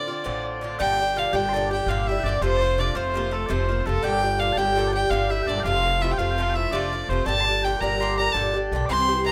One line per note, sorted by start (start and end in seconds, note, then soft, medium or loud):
0.00 0.10 D3 medium
0.00 0.21 D3 medium
0.00 0.41 D4 medium
0.00 0.42 D5 loud
0.00 0.79 D5 medium
0.08 0.24 D3 soft
0.08 0.24 C4 soft
0.08 0.25 F4 medium
0.24 0.76 A1 medium
0.24 0.60 A2 medium
0.24 0.61 D3 medium
0.24 0.62 C4 medium
0.24 0.62 F4 medium
0.61 0.78 A2 medium
0.61 0.79 D3 medium
0.61 0.79 C4 medium
0.61 0.80 F4 medium
0.79 1.30 G1 medium
0.79 0.99 A#2 medium
0.79 0.99 D3 medium
0.79 0.99 D4 medium
0.79 1.18 G4 medium
0.79 0.98 G4 medium
0.79 1.17 G5 medium
0.79 1.20 G5 loud
0.99 1.16 D3 soft
0.99 1.17 D4 medium
0.99 1.16 G4 soft
1.16 1.33 A#2 medium
1.16 1.33 D3 medium
1.16 1.33 D4 medium
1.16 1.34 F4 medium
1.16 1.32 G4 medium
1.16 1.33 F5 medium
1.16 1.37 F5 loud
1.33 1.83 G1 loud
1.33 1.53 A#2 medium
1.33 1.54 D3 medium
1.33 1.53 D4 medium
1.33 1.52 G4 medium
1.33 1.53 G4 medium
1.33 1.49 G5 medium
1.33 1.71 G5 loud
1.49 1.53 C6 medium
1.53 1.70 A#2 medium
1.53 1.71 D3 medium
1.53 1.71 D4 medium
1.53 1.70 G4 medium
1.53 1.69 A4 medium
1.53 1.70 A5 medium
1.69 1.89 D4 soft
1.69 1.89 G4 medium
1.69 1.88 G4 medium
1.69 1.88 G5 medium
1.69 1.90 G5 medium
1.75 1.88 D3 soft
1.86 2.20 G1 loud
1.86 2.07 A#2 medium
1.86 2.08 D3 medium
1.86 2.06 F4 medium
1.86 2.07 F5 medium
1.86 2.09 F5 medium
1.90 2.08 D4 medium
1.90 2.08 G4 medium
2.07 2.26 D4 medium
2.07 2.25 E4 medium
2.07 2.25 G4 medium
2.07 2.28 E5 medium
2.07 2.19 E5 medium
2.12 2.25 D3 medium
2.19 2.24 G5 medium
2.23 2.39 G1 medium
2.23 2.42 A#2 medium
2.23 2.42 D3 medium
2.23 2.41 D4 medium
2.23 2.41 D5 medium
2.23 2.42 D5 medium
2.28 2.43 D4 medium
2.28 2.43 G4 medium
2.39 2.91 F1 loud
2.39 2.61 C3 medium
2.39 2.61 F3 medium
2.39 2.79 C4 medium
2.39 2.57 C5 medium
2.44 2.62 A3 medium
2.44 2.61 F4 medium
2.44 2.81 C5 loud
2.57 2.79 C5 medium
2.57 2.60 D5 medium
2.62 2.78 F3 soft
2.62 2.79 A3 soft
2.62 2.78 F4 medium
2.78 2.95 C3 medium
2.78 2.96 F3 medium
2.78 2.95 A3 medium
2.78 2.96 D4 medium
2.78 2.94 F4 medium
2.78 2.96 D5 medium
2.78 2.97 D5 loud
2.94 3.45 F1 medium
2.94 3.13 C3 medium
2.94 3.14 F3 medium
2.94 3.15 A3 medium
2.94 3.14 C4 medium
2.94 3.15 F4 medium
2.94 3.36 C5 medium
2.94 3.33 C5 medium
3.14 3.31 C3 medium
3.14 3.32 F3 medium
3.14 3.32 A3 medium
3.14 3.31 A#3 medium
3.14 3.30 F4 medium
3.31 3.49 F3 soft
3.31 3.48 A3 medium
3.31 3.49 A3 soft
3.31 3.49 F4 medium
3.31 3.46 A4 medium
3.31 3.54 A4 medium
3.46 3.83 F1 loud
3.46 3.68 C3 medium
3.46 3.69 F3 medium
3.46 3.67 C4 medium
3.46 3.86 C5 medium
3.46 3.50 D5 medium
3.50 3.69 A3 medium
3.50 3.67 F4 medium
3.50 3.87 C5 medium
3.69 3.86 F3 medium
3.69 3.86 A3 soft
3.69 3.81 A#3 medium
3.69 3.86 F4 medium
3.80 3.94 C4 medium
3.86 4.02 F1 loud
3.86 4.02 C3 medium
3.86 4.03 F3 medium
3.86 4.04 A3 medium
3.86 4.04 F4 medium
3.86 4.03 A4 medium
3.86 4.06 A4 loud
3.92 4.02 A#3 medium
4.03 4.53 G1 loud
4.03 4.22 A#2 medium
4.03 4.23 D3 medium
4.03 4.23 D4 medium
4.03 4.37 G4 medium
4.03 4.21 G4 medium
4.03 4.39 G5 medium
4.03 4.41 G5 loud
4.23 4.39 D3 soft
4.23 4.40 D4 soft
4.23 4.40 G4 medium
4.38 4.56 A#2 medium
4.38 4.57 D3 medium
4.38 4.57 D4 medium
4.38 4.56 F4 loud
4.38 4.56 G4 medium
4.38 4.59 F5 loud
4.38 4.53 F5 medium
4.53 5.06 G1 loud
4.53 4.57 A5 loud
4.57 4.74 A#2 medium
4.57 4.76 D3 medium
4.57 4.77 D4 medium
4.57 4.75 G4 loud
4.57 4.77 G4 medium
4.57 4.88 G5 loud
4.57 4.94 G5 loud
4.76 4.93 A#2 medium
4.76 4.94 D3 medium
4.76 4.94 D4 medium
4.76 4.92 G4 medium
4.76 4.92 A4 medium
4.88 4.92 A5 medium
4.92 5.10 D3 soft
4.92 5.11 D4 soft
4.92 5.10 G4 soft
4.92 5.10 G4 medium
4.92 5.10 G5 medium
4.92 5.12 G5 loud
5.10 5.44 G1 loud
5.10 5.30 A#2 medium
5.10 5.31 D3 medium
5.10 5.30 D4 medium
5.10 5.28 F4 medium
5.10 5.28 G4 medium
5.10 5.31 F5 medium
5.10 5.32 F5 loud
5.28 5.48 D3 soft
5.28 5.48 D4 medium
5.28 5.45 E4 medium
5.28 5.47 G4 medium
5.28 5.49 E5 loud
5.28 5.42 E5 medium
5.42 5.47 G5 medium
5.47 5.63 G1 medium
5.47 5.65 A#2 medium
5.47 5.65 D3 medium
5.47 5.62 D4 medium
5.47 5.66 D4 medium
5.47 5.60 D5 medium
5.47 5.64 D5 loud
5.51 5.66 G4 medium
5.60 5.98 F4 medium
5.60 6.01 F5 medium
5.60 5.63 G5 medium
5.64 6.15 F1 loud
5.64 5.85 C3 medium
5.64 5.85 F3 medium
5.64 5.84 A3 medium
5.64 5.82 F4 medium
5.64 6.03 F5 loud
5.83 6.01 F3 soft
5.83 6.01 A3 medium
5.83 6.01 F4 medium
6.00 6.18 C3 medium
6.00 6.19 F3 medium
6.00 6.18 A3 medium
6.00 6.17 E4 medium
6.00 6.14 E5 medium
6.00 6.13 E5 loud
6.04 6.17 F4 medium
6.11 6.19 G5 medium
6.11 6.18 G5 medium
6.17 6.68 F1 medium
6.17 6.37 C3 medium
6.17 6.37 F3 medium
6.17 6.38 A3 medium
6.17 6.53 F4 medium
6.17 6.38 F4 medium
6.17 6.57 F5 loud
6.17 6.31 F5 medium
6.31 6.42 G5 medium
6.38 6.55 C3 medium
6.38 6.55 F3 medium
6.38 6.54 A3 medium
6.38 6.53 F4 medium
6.42 6.50 F5 medium
6.50 6.54 G5 medium
6.54 6.72 F3 soft
6.54 6.73 A3 soft
6.54 6.72 E4 medium
6.54 6.72 F4 medium
6.54 6.72 E5 medium
6.54 6.74 E5 loud
6.71 7.06 F1 medium
6.71 6.92 C3 medium
6.71 6.93 F3 medium
6.71 6.93 A3 medium
6.71 7.08 D4 medium
6.71 6.91 F4 medium
6.71 7.09 D5 medium
6.71 7.11 D5 medium
6.93 7.10 F3 soft
6.93 7.11 A3 medium
6.93 7.10 F4 medium
7.08 7.25 F1 medium
7.08 7.26 C3 medium
7.08 7.27 F3 medium
7.08 7.28 C4 medium
7.08 7.27 C5 medium
7.08 7.26 C5 medium
7.13 7.28 A3 medium
7.13 7.28 F4 medium
7.26 7.76 G1 medium
7.26 7.46 A#2 medium
7.26 7.47 D3 medium
7.26 7.47 D4 medium
7.26 7.46 G4 medium
7.26 7.62 A4 medium
7.26 7.66 A5 loud
7.26 7.41 A5 medium
7.41 7.45 C6 loud
7.45 7.65 D4 soft
7.45 7.64 G4 soft
7.45 7.63 A5 loud
7.51 7.65 D3 soft
7.62 7.81 A#2 medium
7.62 7.82 D3 medium
7.62 7.78 G4 medium
7.62 7.81 G5 medium
7.62 7.82 G5 loud
7.67 7.81 D4 medium
7.67 7.81 G4 medium
7.79 8.31 G1 medium
7.79 8.01 D4 medium
7.79 8.01 G4 medium
7.79 8.14 A#4 medium
7.79 8.17 A#5 loud
7.79 8.01 A#5 medium
7.83 7.99 A#2 medium
7.83 8.00 D3 medium
8.00 8.17 A#2 medium
8.00 8.18 D3 medium
8.00 8.18 D4 medium
8.00 8.16 G4 medium
8.00 8.18 C6 medium
8.17 8.34 D3 soft
8.17 8.35 D4 soft
8.17 8.35 G4 soft
8.17 8.34 A#4 medium
8.17 8.34 A#5 loud
8.32 8.68 G1 medium
8.32 8.54 A#2 medium
8.32 8.55 D3 medium
8.32 8.55 D4 medium
8.32 8.53 A4 loud
8.32 8.53 A5 loud
8.32 8.86 A5 medium
8.36 8.53 G4 medium
8.54 8.72 D3 soft
8.54 8.73 D4 soft
8.54 8.71 G4 medium
8.71 8.87 B1 medium
8.71 8.89 A#2 medium
8.71 8.89 D3 medium
8.71 8.90 D4 medium
8.76 8.90 G4 medium
8.86 9.32 C2 medium
8.86 9.09 C3 medium
8.86 9.09 E3 medium
8.86 9.07 C5 medium
8.86 9.24 C6 loud
8.86 9.32 C6 loud
8.86 8.89 D6 loud
8.90 9.09 C4 medium
8.90 9.07 G4 medium
9.07 9.25 C4 soft
9.07 9.26 G4 medium
9.07 9.24 C5 medium
9.11 9.24 E3 soft
9.24 9.32 C3 medium
9.24 9.32 E3 medium
9.24 9.32 C4 medium
9.24 9.32 G4 medium
9.24 9.32 A#4 medium
9.24 9.32 A#5 loud